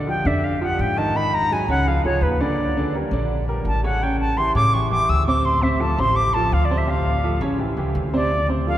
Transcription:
Already playing: upright bass A#1
0.07 grand piano F3 F4 G4, flute G5
0.25 upright bass F2, grand piano D3 D4 D5, flute E5
0.44 flute F5
0.61 grand piano F3 F4 G4, flute F#5
0.79 upright bass G#2, flute G5
0.96 grand piano D#3 D#4 D#5, flute A5
1.15 grand piano D#3 D#4 D#5, flute B5
1.34 flute A#5
1.51 grand piano F#3 F#4 G#4, flute G#5
1.68 upright bass C#2, grand piano C#3 C#4 C#5, flute F#5
1.86 grand piano F3 F4 G#4, flute F5
2.04 upright bass C#2, grand piano F3 F4 G#4, flute C#5
2.21 upright bass D#2, flute B4
2.40 grand piano D3 D4 D5, flute D5
2.77 grand piano D3 D4 D5
2.94 grand piano G3 G4 A#4
3.11 upright bass A#1, grand piano D3 D4 D5
3.48 grand piano G3 G4 A#4
3.65 upright bass A1, flute A5
3.84 grand piano C#3 C#4 C#5, flute F#5
4.02 grand piano C#3 C#4 C#5, flute G5
4.20 flute A5
4.37 grand piano E3 E4 G4, flute C6
4.55 upright bass A2, grand piano C#3 C#4 C#5, flute D6
4.74 grand piano E3 E4 G4, flute C#6
4.91 upright bass E2, grand piano E3 E4 G4, flute D6
5.09 upright bass D2, flute E6
5.27 grand piano C3 C4 C5, flute D6
5.45 flute C6
5.62 grand piano C3 C4 C5, flute E5
5.80 grand piano F3 F4 A4, flute A5
5.98 upright bass A1, grand piano C3 C4 C5, flute C6
6.16 flute D6
6.34 grand piano F3 F4 A4, flute A5
6.52 upright bass D2, flute F5
6.65 flute D5
6.70 grand piano C3 C4 C5
6.78 flute E5
6.87 grand piano C3 C4 C5, flute F5
7.24 grand piano F3 F4 A4
7.41 upright bass A1, grand piano C#3 C#4 C#5
7.59 grand piano E3 E4 G4
7.77 upright bass C#2, grand piano E3 E4 G4
7.95 upright bass D2
8.13 grand piano C3 C4 C5, flute D5
8.49 grand piano C3 C4 C5
8.67 grand piano F3 F4 A4, flute F5

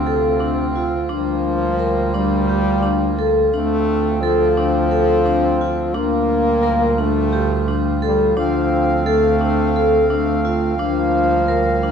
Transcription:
Already playing: double bass D2, french horn C3, harmonium D3 C4 F4
0.06 vibraphone A4
0.40 vibraphone D4
0.76 vibraphone F4
1.09 double bass D2, french horn F3, harmonium G3 A#3, vibraphone D4
1.79 vibraphone A#4
2.14 french horn G3, vibraphone D4
2.49 vibraphone G4
2.83 vibraphone D4
3.19 vibraphone A4
3.53 double bass D2, harmonium D3 C4, french horn A3, vibraphone D4
4.21 french horn F3, vibraphone A4
4.57 vibraphone D4
4.91 vibraphone A4
5.26 vibraphone D4
5.61 vibraphone F4
5.95 double bass D2, harmonium A#2 G3, french horn A#3, vibraphone D4
6.63 vibraphone A#4
6.98 french horn A3, vibraphone D4
7.33 vibraphone G4
7.68 vibraphone D4
8.02 french horn G3, vibraphone A4
8.37 double bass D2, harmonium D3 C4 F5, french horn F3, vibraphone D4
9.06 french horn A3, vibraphone A4
9.41 vibraphone D4
9.76 vibraphone A4
10.09 french horn A3, vibraphone D4
10.45 vibraphone F4
10.78 double bass D2, french horn F3, harmonium G3 A#3, vibraphone D4
11.48 vibraphone A#4
11.83 vibraphone D4

